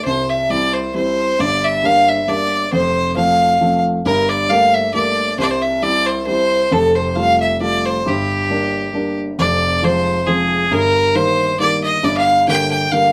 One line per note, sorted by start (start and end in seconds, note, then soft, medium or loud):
0.05 1.35 C2 medium
0.05 0.49 C3 medium
0.05 0.31 C5 loud
0.29 0.52 E5 medium
0.50 0.85 G3 medium
0.50 0.86 C4 medium
0.50 0.86 E4 medium
0.50 0.75 D5 loud
0.74 0.94 C5 medium
0.94 1.30 G3 medium
0.94 1.30 C4 medium
0.94 1.31 E4 medium
0.94 1.41 C5 loud
1.39 2.68 G1 medium
1.39 1.82 G2 medium
1.39 1.65 D5 loud
1.64 1.87 E5 loud
1.83 2.19 G3 medium
1.83 2.19 A#3 medium
1.83 2.19 D4 medium
1.83 2.10 F5 loud
2.08 2.30 E5 loud
2.28 2.63 G3 medium
2.28 2.64 A#3 soft
2.28 2.64 D4 medium
2.28 2.72 D5 loud
2.72 4.02 F1 medium
2.72 3.15 F2 medium
2.72 3.14 C5 loud
3.16 3.52 F3 medium
3.16 3.52 A3 medium
3.16 3.52 C4 medium
3.16 3.81 F5 loud
3.61 3.96 F3 soft
3.61 3.97 A3 medium
3.61 3.97 C4 medium
4.05 5.35 G1 medium
4.05 4.49 G2 medium
4.05 4.31 A#4 loud
4.29 4.51 D5 loud
4.50 4.85 G3 medium
4.50 4.85 A3 medium
4.50 4.86 A#3 medium
4.50 4.75 F5 loud
4.74 4.93 E5 loud
4.94 5.30 G3 medium
4.94 5.30 A3 medium
4.94 5.30 A#3 medium
4.94 5.35 D5 loud
5.38 6.68 C2 medium
5.38 5.82 C3 medium
5.38 5.45 C5 loud
5.43 5.52 D5 loud
5.50 5.63 C5 loud
5.62 5.84 E5 loud
5.82 6.18 G3 medium
5.82 6.19 C4 medium
5.82 6.19 E4 medium
5.82 6.08 D5 loud
6.06 6.26 C5 loud
6.27 6.63 G3 medium
6.27 6.63 C4 soft
6.27 6.63 E4 medium
6.27 6.74 C5 loud
6.71 8.01 F1 medium
6.71 7.15 F2 medium
6.71 6.97 A4 loud
6.95 7.17 C5 medium
7.16 7.52 G3 medium
7.16 7.52 A3 medium
7.16 7.52 F4 medium
7.16 7.40 F5 loud
7.40 7.59 E5 medium
7.60 7.96 G3 medium
7.60 7.96 A3 medium
7.60 7.97 F4 medium
7.60 7.87 D5 loud
7.86 8.09 C5 loud
8.06 9.35 G1 medium
8.06 8.48 G2 medium
8.06 9.19 G4 loud
8.50 8.85 G3 medium
8.50 8.85 A#3 medium
8.50 8.86 D4 medium
8.94 9.29 G3 soft
8.94 9.29 A#3 soft
8.94 9.30 D4 medium
9.39 10.67 F1 medium
9.39 9.81 F2 medium
9.39 9.86 D5 loud
9.83 10.18 F3 medium
9.83 10.18 G#3 medium
9.83 10.18 C4 medium
9.83 10.28 C5 loud
10.27 10.62 F3 medium
10.27 10.62 G#3 medium
10.27 10.63 C4 medium
10.27 10.73 G#4 loud
10.71 12.00 G1 medium
10.71 11.14 G2 medium
10.71 11.17 A#4 loud
11.15 11.50 D#3 medium
11.15 11.51 G3 soft
11.15 11.51 A#3 medium
11.15 11.59 C5 loud
11.59 11.95 D#3 medium
11.59 11.95 G3 medium
11.59 11.95 A#3 medium
11.59 11.82 D5 loud
11.84 12.06 D#5 loud
12.03 13.12 G1 medium
12.03 12.46 G2 medium
12.03 12.16 D5 loud
12.17 12.46 F5 loud
12.48 12.83 D3 medium
12.48 12.83 G3 medium
12.48 12.84 A#3 medium
12.48 12.70 G5 loud
12.71 12.93 G5 loud
12.92 13.12 D3 soft
12.92 13.12 G3 medium
12.92 13.12 A#3 medium
12.92 13.12 F5 loud